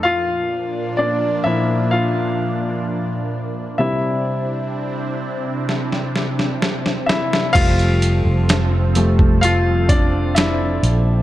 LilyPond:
<<
  \new Staff \with { instrumentName = "Grand piano" } { \time 4/4 \key f \major \tempo 4 = 64 <f' f''>4 <d' d''>8 <e' e''>8 <f' f''>2 | e''2. r8 <e' e''>8 | <f' f''>2 <f' f''>8 <d' d''>8 <e' e''>4 | }
  \new Staff \with { instrumentName = "Grand piano" } { \clef bass \time 4/4 \key f \major r4. <bes, f d'>8 r2 | <c g e'>8 r2. r8 | <f g a>4. <f g a>8 r2 | }
  \new Staff \with { instrumentName = "Analog synth pad" } { \time 4/4 \key f \major <bes, f bes d'>1 | <c c' d' e'>1 | <f c' a'>1 | }
  \new Staff \with { instrumentName = "Fretless electric bass" } { \clef bass \time 4/4 \key f \major r1 | r1 | f,,8. f,,2~ f,,8. bes,,8 | }
  \new DrumStaff \with { instrumentName = "Drums" } \drummode { \time 4/4 r4 r4 r4 r4 | r4 r4 sn16 sn16 sn16 sn16 sn16 sn16 sn16 sn16 | <cymc hh bd>16 hh16 hh8 <hh sn>8 hh16 bd16 hh8 <hh bd>8 <hh sn>8 hh8 | }
>>